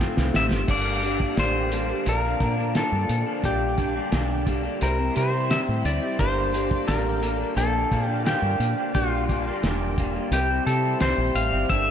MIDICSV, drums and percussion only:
0, 0, Header, 1, 2, 480
1, 0, Start_track
1, 0, Tempo, 688073
1, 476, Time_signature, 4, 2, 24, 8
1, 8306, End_track
2, 0, Start_track
2, 0, Title_t, "Drums"
2, 0, Note_on_c, 9, 38, 71
2, 68, Note_off_c, 9, 38, 0
2, 120, Note_on_c, 9, 38, 72
2, 190, Note_off_c, 9, 38, 0
2, 239, Note_on_c, 9, 38, 91
2, 309, Note_off_c, 9, 38, 0
2, 357, Note_on_c, 9, 38, 79
2, 427, Note_off_c, 9, 38, 0
2, 475, Note_on_c, 9, 49, 76
2, 476, Note_on_c, 9, 36, 92
2, 545, Note_off_c, 9, 49, 0
2, 546, Note_off_c, 9, 36, 0
2, 718, Note_on_c, 9, 42, 53
2, 788, Note_off_c, 9, 42, 0
2, 837, Note_on_c, 9, 36, 75
2, 907, Note_off_c, 9, 36, 0
2, 957, Note_on_c, 9, 42, 63
2, 959, Note_on_c, 9, 38, 82
2, 1026, Note_off_c, 9, 42, 0
2, 1029, Note_off_c, 9, 38, 0
2, 1198, Note_on_c, 9, 42, 55
2, 1268, Note_off_c, 9, 42, 0
2, 1439, Note_on_c, 9, 42, 67
2, 1509, Note_off_c, 9, 42, 0
2, 1677, Note_on_c, 9, 36, 76
2, 1678, Note_on_c, 9, 42, 46
2, 1747, Note_off_c, 9, 36, 0
2, 1747, Note_off_c, 9, 42, 0
2, 1918, Note_on_c, 9, 42, 69
2, 1921, Note_on_c, 9, 38, 90
2, 1988, Note_off_c, 9, 42, 0
2, 1991, Note_off_c, 9, 38, 0
2, 2158, Note_on_c, 9, 42, 50
2, 2227, Note_off_c, 9, 42, 0
2, 2398, Note_on_c, 9, 36, 90
2, 2398, Note_on_c, 9, 42, 66
2, 2467, Note_off_c, 9, 36, 0
2, 2468, Note_off_c, 9, 42, 0
2, 2635, Note_on_c, 9, 42, 48
2, 2637, Note_on_c, 9, 36, 71
2, 2705, Note_off_c, 9, 42, 0
2, 2707, Note_off_c, 9, 36, 0
2, 2875, Note_on_c, 9, 42, 74
2, 2878, Note_on_c, 9, 38, 93
2, 2945, Note_off_c, 9, 42, 0
2, 2948, Note_off_c, 9, 38, 0
2, 3116, Note_on_c, 9, 42, 55
2, 3117, Note_on_c, 9, 36, 74
2, 3186, Note_off_c, 9, 36, 0
2, 3186, Note_off_c, 9, 42, 0
2, 3357, Note_on_c, 9, 42, 75
2, 3427, Note_off_c, 9, 42, 0
2, 3598, Note_on_c, 9, 42, 55
2, 3668, Note_off_c, 9, 42, 0
2, 3841, Note_on_c, 9, 42, 81
2, 3843, Note_on_c, 9, 38, 101
2, 3910, Note_off_c, 9, 42, 0
2, 3913, Note_off_c, 9, 38, 0
2, 4082, Note_on_c, 9, 42, 58
2, 4151, Note_off_c, 9, 42, 0
2, 4320, Note_on_c, 9, 36, 92
2, 4320, Note_on_c, 9, 42, 72
2, 4390, Note_off_c, 9, 36, 0
2, 4390, Note_off_c, 9, 42, 0
2, 4563, Note_on_c, 9, 42, 51
2, 4633, Note_off_c, 9, 42, 0
2, 4682, Note_on_c, 9, 36, 73
2, 4751, Note_off_c, 9, 36, 0
2, 4801, Note_on_c, 9, 42, 71
2, 4804, Note_on_c, 9, 38, 99
2, 4871, Note_off_c, 9, 42, 0
2, 4873, Note_off_c, 9, 38, 0
2, 5042, Note_on_c, 9, 42, 55
2, 5112, Note_off_c, 9, 42, 0
2, 5281, Note_on_c, 9, 42, 69
2, 5351, Note_off_c, 9, 42, 0
2, 5522, Note_on_c, 9, 36, 65
2, 5523, Note_on_c, 9, 42, 47
2, 5592, Note_off_c, 9, 36, 0
2, 5593, Note_off_c, 9, 42, 0
2, 5764, Note_on_c, 9, 42, 71
2, 5767, Note_on_c, 9, 38, 97
2, 5834, Note_off_c, 9, 42, 0
2, 5837, Note_off_c, 9, 38, 0
2, 6002, Note_on_c, 9, 42, 55
2, 6072, Note_off_c, 9, 42, 0
2, 6241, Note_on_c, 9, 42, 68
2, 6242, Note_on_c, 9, 36, 98
2, 6311, Note_off_c, 9, 42, 0
2, 6312, Note_off_c, 9, 36, 0
2, 6483, Note_on_c, 9, 36, 71
2, 6484, Note_on_c, 9, 42, 48
2, 6552, Note_off_c, 9, 36, 0
2, 6554, Note_off_c, 9, 42, 0
2, 6720, Note_on_c, 9, 42, 67
2, 6723, Note_on_c, 9, 38, 92
2, 6790, Note_off_c, 9, 42, 0
2, 6792, Note_off_c, 9, 38, 0
2, 6961, Note_on_c, 9, 36, 70
2, 6961, Note_on_c, 9, 42, 58
2, 7031, Note_off_c, 9, 36, 0
2, 7031, Note_off_c, 9, 42, 0
2, 7198, Note_on_c, 9, 42, 75
2, 7268, Note_off_c, 9, 42, 0
2, 7443, Note_on_c, 9, 42, 52
2, 7513, Note_off_c, 9, 42, 0
2, 7676, Note_on_c, 9, 42, 72
2, 7679, Note_on_c, 9, 38, 95
2, 7746, Note_off_c, 9, 42, 0
2, 7748, Note_off_c, 9, 38, 0
2, 7922, Note_on_c, 9, 42, 60
2, 7992, Note_off_c, 9, 42, 0
2, 8157, Note_on_c, 9, 42, 75
2, 8160, Note_on_c, 9, 36, 94
2, 8227, Note_off_c, 9, 42, 0
2, 8229, Note_off_c, 9, 36, 0
2, 8306, End_track
0, 0, End_of_file